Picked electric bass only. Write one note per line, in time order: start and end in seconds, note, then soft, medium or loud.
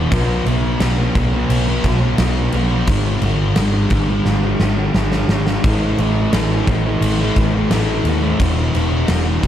0.12 0.40 B1 loud
0.46 0.74 B1 loud
0.80 1.09 B1 medium
1.15 1.43 B1 medium
1.49 1.78 B1 loud
1.84 2.12 B1 loud
2.18 2.47 B1 loud
2.53 2.89 B1 loud
2.87 3.16 G#1 loud
3.22 3.50 G#1 loud
3.56 3.85 G#1 loud
3.91 4.19 G#1 medium
4.25 4.54 G#1 loud
4.60 4.88 G#1 medium
4.95 5.23 G#1 medium
5.28 5.57 G#1 medium
5.64 5.92 A1 loud
5.98 6.26 A1 loud
6.33 6.61 A1 medium
6.67 6.95 A1 loud
7.01 7.30 A1 loud
7.37 7.65 A1 medium
7.70 7.99 A1 loud
8.04 8.33 D#2 medium
8.40 8.68 E1 loud
8.75 9.03 E1 medium
9.09 9.37 E1 loud
9.43 9.47 E1 medium